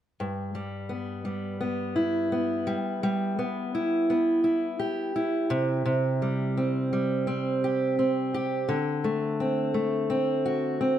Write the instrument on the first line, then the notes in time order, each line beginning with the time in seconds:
steel-string acoustic guitar
0.20 G2
0.55 G3
0.89 B3
1.25 G3
1.61 B3
1.96 E4
2.32 B3
2.67 G3
3.03 G3
3.39 B3
3.75 E4
4.10 B3
4.44 E4
4.79 G4
5.16 E4
5.50 C3
5.86 C3
6.22 G3
6.57 C4
6.93 G3
7.27 C4
7.64 G4
7.99 C4
8.34 G4
8.69 D3
9.04 A3
9.40 C4
9.74 A3
10.10 C4
10.46 F#4
10.81 C4